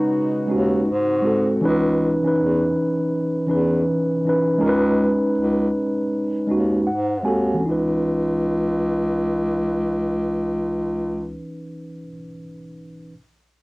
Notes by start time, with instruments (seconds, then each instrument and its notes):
Already playing: ambient pad C#3 G#3 D#4 F#4, tine electric piano G#3 C#4 D#4 B4
0.47 bass clarinet D#2, tine electric piano G#3 C#4 D#4
0.51 tine electric piano F#4
0.88 bass clarinet G#2, ambient pad C4 F#4
1.22 tine electric piano G#3 C4 F#4
1.27 tine electric piano A4
1.61 bass clarinet C#2, tine electric piano E3 C#4 D#4
1.65 tine electric piano B4
2.23 tine electric piano E3 C#4 D#4
2.27 tine electric piano B4
2.39 bass clarinet E2
3.47 tine electric piano E3 C#4 D#4
3.51 bass clarinet E2, tine electric piano B4
4.25 tine electric piano E3 C#4 D#4
4.29 tine electric piano B4
4.58 tine electric piano G#3 C#4 D#4
4.63 bass clarinet C#2, tine electric piano A#4
4.69 tine electric piano B4
5.38 bass clarinet C#2
6.47 bass clarinet D#2, tine electric piano G#3 C#4 D#4
6.51 tine electric piano F#4
6.87 bass clarinet G#2, tine electric piano F#5
7.23 bass clarinet D#2, tine electric piano G#3 C4 F#4 G#5
7.27 tine electric piano A4
7.54 tine electric piano E3
7.60 bass clarinet C#2, tine electric piano C#4
7.66 tine electric piano D#4
7.71 tine electric piano B4